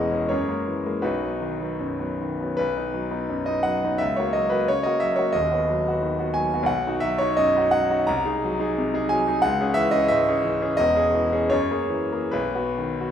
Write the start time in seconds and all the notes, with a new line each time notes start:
Already playing: E1 E2 E3 G#3 C#4 G#4 D#5
0.11 G#3 C#4
0.29 F#2 G#4 A#4 C#5
0.48 G#3 A#3
0.68 E3
0.86 G#3 A#3
1.02 B1 D#4 F#4 B4
1.23 F#3 B3
1.41 D#3
1.61 F#3 B3
1.80 F#2
1.99 F#3 B3
2.21 D#3
2.41 F#3 B3
2.57 B1 B4
2.76 B3 D#4
2.94 F#3
3.11 B3 D#4
3.30 F#2
3.46 B3 D#4 D#5
3.63 F#3 F#5
3.85 B3 D#4
3.98 C#2 E5
4.16 A#3 F#4 C#5
4.33 F#3 D#5
4.50 A#3 F#4 B4
4.68 C#3 C#5
4.83 A#3 F#4 D#5
5.00 F#3 E5
5.16 A#3 F#4 C#5
5.33 D#1 D#2 D#5
5.52 B3 F#4
5.70 F#3
5.87 B3 F#4
6.02 D#3
6.19 B3 F#4
6.34 F#3 G#5
6.54 B3 F#4
6.63 B1 F#5
6.87 D#4 F#4
7.00 F#3 E5
7.18 D#4 F#4 C#5
7.37 F#2 D#5
7.57 D#4 F#4
7.71 F#3 F#5
7.91 D#4 F#4
8.07 C2 A#5
8.26 D#4 G#4
8.44 F#3
8.60 D#4 G#4
8.78 C3
8.94 D#4 G#4
9.09 F#3 G#5
9.27 D#4 G#4
9.42 C#2 F#5
9.61 C#4 G#4
9.74 E3 E5
9.91 C#4 G#4 D#5
10.08 G#2 E5
10.29 C#4 G#4
10.43 E3
10.62 C#4 G#4
10.77 E1 E2 D#5
10.95 C#4 G#4
11.15 E3
11.32 C#4 G#4
11.50 F#2 C#5
11.71 A#3 G#4
11.90 E3
12.12 A#3 G#4
12.31 B1 B4
12.55 B3 F#4
12.78 D#3
13.01 B3 F#4